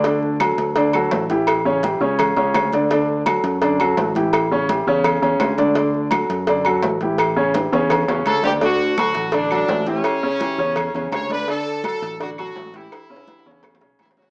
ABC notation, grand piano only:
X:1
M:4/4
L:1/8
Q:1/4=168
K:D
V:1 name="Grand piano"
[D,Dd]2 [F,FA]2 [D,Dd] [F,FA]2 [E,EG]- | [E,EG] [C,Cc] [E,EG] [C,Cc]2 [C,Cc]2 [D,Dd] | [D,Dd]2 [F,FA]2 [D,Dd] [F,FA]2 [E,EG]- | [E,EG] [C,Cc] [E,EG] [C,Cc]2 [C,Cc]2 [D,Dd] |
[D,Dd]2 [F,FA]2 [D,Dd] [F,FA]2 [E,EG]- | [E,EG] [C,Cc] [E,EG] [C,Cc]2 [C,Cc]2 [D,Dd] | [D,Dd]2 [F,FA]2 [D,Dd] [F,FA]2 [E,EG]- | [E,EG] [C,Cc] [E,EG] [C,Cc]2 [C,Cc]2 [D,Dd] |
[D,Dd]2 [F,FA]2 [D,Dd] [F,FA]2 [E,EG]- | [E,EG] [C,Cc] [E,EG] [C,Cc]2 [C,Cc]2 [C,Cc] |]